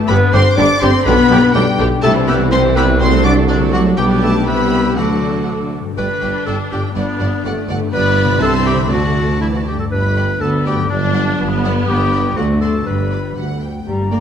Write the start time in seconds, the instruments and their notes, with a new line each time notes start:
Already playing: harp G3 E4 G4 B4 E5
0.08 tuba G1, double bass section G1, harp G2, viola section D3 G3, french horn section B3, cello section B3, violin section D4 G4 B5, clarinet B4
0.33 tuba G1, double bass section G1, viola section D3 G3, harp G3, french horn section C4, cello section C4, violin section D4 G4 C6, cor anglais G4, clarinet C5, flute D6
0.57 tuba G1, double bass section G1, viola section D3 G3, french horn section D4, cello section D4, violin section D4 G4 D6, harp G4, clarinet D5
0.81 tuba G1, double bass section G1, viola section D3 G3, french horn section C4, cello section C4, violin section D4 G4 C6, harp D4, cor anglais G4, clarinet C5, flute D6
1.05 tuba B1, double bass section B1, harp B2, viola section D3 G3, french horn section B3, cello section B3, violin section D4 G4 B5, clarinet B4
1.30 tuba B1, double bass section B1, viola section D3 G3, harp G3, violin section D4 G4, cor anglais G4, flute D6
1.54 tuba B1, double bass section B1, viola section D3 G3, cello section G3, french horn section G3, violin section D4 G4 G5, clarinet G4, harp G4
1.78 tuba B1, double bass section B1, viola section D3 G3, harp D4, violin section D4 G4, cor anglais G4, flute D6
2.02 tuba C2, double bass section C2, harp C3, viola section G3, french horn section A3, cello section A3, violin section E4 G4 A5, clarinet A4
2.15 viola section E3, violin section C4 E4
2.28 harp G3, viola section G3, cello section B3, french horn section B3, violin section E4 G4 B5, cor anglais G4, clarinet B4, flute E6
2.40 viola section E3, violin section C4 E4
2.51 viola section G3, cello section C4, french horn section C4, violin section E4 G4 C6, harp G4, clarinet C5
2.63 viola section E3, violin section C4 E4
2.76 viola section G3, french horn section B3, cello section B3, harp E4, violin section E4 G4 B5, cor anglais G4, clarinet B4, flute E6
2.88 viola section E3, violin section C4 E4
3.00 harp C3, viola section F#3 A3, cello section C4, french horn section C4, violin section C4 F#4 C6, clarinet C5
3.13 viola section F#3 A3, violin section D4 A4
3.24 viola section F#3 A3, harp A3, violin section C4 F#4 D6, cello section D4, french horn section D4, cor anglais F#4, clarinet D5, flute D6
3.37 viola section F#3 A3, violin section D4 A4
3.49 cello section D3, french horn section D3, viola section F#3 A3, violin section C4 F#4 D5, clarinet D4, harp F#4
3.62 viola section F#3 A3, violin section D4 A4
3.73 cello section F#3, french horn section F#3, viola section F#3 A3, violin section C4 F#4 F#5, clarinet F#4, cor anglais F#4, harp A4, flute D6
3.86 viola section F#3 A3, violin section D4 A4
3.97 tuba B1, double bass section B1, harp B2, viola section G3 B3, cello section G3, french horn section G3, violin section D4 G4 G5, cor anglais G4, clarinet G4, flute D6
4.23 cello section A3, french horn section A3, harp D4 G4, clarinet A4, violin section A5
4.47 tuba C2, double bass section C2, harp C3, viola section G3 B3, cello section B3, french horn section B3, violin section E4 G4 B5, cor anglais G4, clarinet B4, flute E6
4.72 harp E4 G4
4.97 double bass section D2, tuba D2, harp D3, viola section D3 A3, cello section F#3, french horn section F#3, violin section D4 F#4 F#5, clarinet F#4, cor anglais A4, flute D6
5.23 harp D4
5.73 harp D5
5.80 harp G2
5.85 harp G3
5.89 harp D4
5.94 tuba G1, harp G4, violin section D5 G5
5.98 double bass section G1, cello section G2, viola section D4, clarinet B4, violin section B5
6.22 tuba G1, double bass section G1, cello section G2, violin section D5 G5
6.46 tuba G1, double bass section G1, cello section G2, clarinet A4, violin section D5 G5 A5
6.71 tuba G1, double bass section G1, cello section G2, clarinet G4, violin section D5 G5
6.78 harp G2
6.82 harp A3
6.87 harp D4
6.91 harp F#4
6.96 tuba G1, double bass section G1, cello section G2, viola section B3, clarinet D4, violin section D5 F#5
7.20 tuba G1, double bass section G1, cello section G2, violin section D5 F#5
7.44 tuba G1, double bass section G1, cello section G2, viola section A3, violin section D5 F#5
7.68 tuba G1, double bass section G1, cello section G2, violin section D5 F#5
7.74 harp G2
7.79 harp B3
7.83 harp D4
7.88 harp G4
7.92 tuba G1, double bass section G1, cello section G2, viola section B3, clarinet B4, violin section D5 B5
8.23 harp C3
8.28 harp C4
8.32 harp E4
8.37 viola section C4, harp G4, violin section A5
8.41 tuba C2, double bass section C2, cello section C3, clarinet A4, violin section E5 C6
8.66 clarinet G4, violin section G5 B5
8.73 harp D3
8.78 harp A3
8.82 harp D4
8.87 harp D5
8.91 tuba D2, double bass section D2, cello section D3, viola section A3, clarinet F#4, violin section D5 F#5 A5
9.41 cello section E3, clarinet E4, violin section E5
9.54 clarinet F#4, violin section F#5
9.66 cello section D3, clarinet G4, violin section G5
9.73 harp G2
9.78 harp G3, clarinet A4, violin section A5
9.82 harp D4
9.87 harp D5, violin section B5
9.91 tuba G1, double bass section G1, cello section G2, clarinet B4
10.17 violin section D5 G5
10.41 tuba D2, cello section D2, double bass section D2, viola section B3, clarinet A4, violin section A5
10.65 clarinet G4, violin section D5 G5
10.72 harp G2
10.77 harp F#3
10.82 harp D4
10.86 harp D5
10.90 double bass section G1, tuba G1, cello section G2, clarinet D4, viola section D4, violin section D5
11.15 violin section D5 F#5
11.39 tuba G1, double bass section G1, cello section G2, viola section B3
11.64 violin section D5 F#5
11.70 harp G2
11.75 harp B3
11.79 harp D4
11.84 harp D5
11.88 double bass section G1, tuba G1, cello section G2, clarinet G4, violin section G5
12.12 violin section D5 B5
12.19 harp D3
12.24 harp C4
12.28 harp D4
12.33 harp D5
12.37 double bass section D2, tuba D2, cello section D2, viola section A3, clarinet F#4, violin section F#5
12.61 clarinet A4, violin section D5 A5 C6
12.68 harp G2
12.73 harp B3
12.77 harp D4
12.82 harp D5
12.86 tuba G1, double bass section G1, cello section G2, viola section G3, clarinet B4, violin section B5
13.12 violin section D5 B5
13.37 tuba D2, cello section D2, double bass section D2, violin section F#5
13.63 violin section G5
13.86 double bass section G1, harp G2, french horn section G3, cello section G3, clarinet D5, flute A#5
14.00 harp A#3
14.12 french horn section A#3, cello section A#3, viola section A#4, harp D5, violin section D5 G5